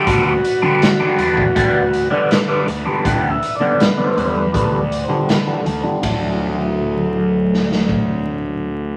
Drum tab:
RD |----------------|----------------|x---------------|
HH |x-x-x-x-x-x-x-x-|x-x-x-x-x-x-x-x-|----------------|
SD |----o-------o---|----o-------o---|--------oo------|
BD |o------oo-------|o-------o-------|o---------o-----|